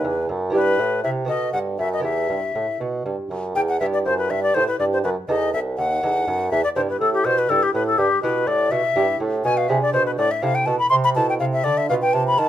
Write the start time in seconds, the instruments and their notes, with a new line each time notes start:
Already playing: lute B3 D#4 F#4, flute B4
0.05 lute E2, bassoon E2
0.29 lute F#2, bassoon F#2
0.50 lute B3 E4 G4
0.54 lute G2, bassoon G2, flute B4
0.79 lute A2, bassoon A2
1.04 bassoon C3, lute C3, flute E5
1.25 bassoon B2, lute B3 F#4 A4, flute D#5
1.29 lute B2
1.53 lute G2, bassoon G2, flute F#5
1.78 bassoon F#2, lute F#2, flute E5
1.93 flute D#5
2.00 lute B3 E4 G4, flute E5
2.04 bassoon E2, lute E2
2.29 bassoon G2, lute G2
2.55 bassoon A2, lute A2
2.80 bassoon B2, lute B2
3.05 bassoon G2, lute G2
3.30 bassoon F#2, lute F#2
3.55 bassoon E2, lute E2, flute G5
3.69 flute F#5
3.80 lute G2 B3 E4 G4, bassoon G2, flute E5
3.93 flute D5
4.05 bassoon F#2, lute F#2, flute C5
4.18 flute B4
4.30 bassoon G2, lute G2, flute E5
4.43 flute D5
4.54 lute A2 B3 E4 G4, bassoon A2, flute C5
4.68 flute B4
4.79 lute G2, bassoon G2, flute D5
4.93 flute C5
5.03 bassoon F#2, lute F#2, flute B4
5.28 lute E2 B3 D#4 A4, bassoon E2, flute D#5
5.53 bassoon C2, flute E5
5.77 bassoon D#2, lute D#2, flute F#5
6.03 bassoon E2, lute E2 B3 D#4 A4
6.27 bassoon F#2, lute F#2
6.51 bassoon E2, lute E2, flute E5
6.64 flute D5
6.76 bassoon G2, lute G2 B3 E4 G4, flute C5
6.89 flute B4
7.00 bassoon A2, lute A2, flute A4
7.14 flute G4
7.25 bassoon B2, lute B2, flute C5
7.38 flute B4
7.49 bassoon G2, lute G2 B3 E4 G4, flute A4
7.63 flute G4
7.74 bassoon A2, lute A2, flute B4
7.87 flute A4
7.98 bassoon G2, lute G2, flute G4
8.22 bassoon B2, lute B2 B3 E4 G4, flute B4
8.47 bassoon A2, lute A2, flute D5
8.71 bassoon B2, lute B2, flute E5
8.96 bassoon G2, lute G2 B3 E4 G4
9.20 lute A2, bassoon A2
9.44 bassoon B2, lute B2, flute G#5
9.57 flute F5
9.69 bassoon C3, lute C3 D4 E4 G#4, flute E5
9.82 flute D5
9.93 bassoon B2, lute B2, flute C5
10.06 flute B4
10.18 bassoon A2, lute A2, flute D5
10.31 flute E5
10.42 bassoon C3, lute C3 C4 E4 A4, flute F5
10.55 flute G5
10.66 bassoon B2, lute B2, flute A5
10.79 flute B5
10.90 bassoon C3, lute C3, flute C6
11.04 flute B5
11.15 bassoon B2, lute B2 C4 E4 A4, flute A5
11.29 flute G5
11.40 bassoon C3, lute C3, flute F5
11.53 flute E5
11.64 bassoon D3, lute D3, flute D5
11.78 flute E5
11.89 bassoon B2, lute B2 B3 F4 B4, flute F5
12.02 flute G5
12.13 bassoon C3, lute C3, flute A5
12.27 flute B5
12.38 bassoon D#3, lute D#3, flute A5